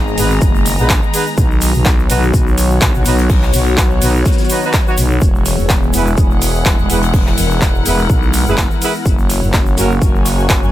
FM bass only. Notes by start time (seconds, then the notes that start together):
Already playing: G#1
0.18 G#1
0.42 F#1
0.79 A#1
1.38 B1
1.75 B1
2.10 B1
2.95 B1
3.06 B1
3.54 B1
4.02 B1
4.98 B1
5.22 E1
5.59 E1
5.94 E1
6.18 E1
6.66 E1
6.79 E1
6.90 E1
7.38 E1
7.86 E1
8.10 B1
8.47 F#1
9.06 F#1
9.43 F#1
9.78 F#1
10.02 F#1
10.50 F#1
10.63 F#1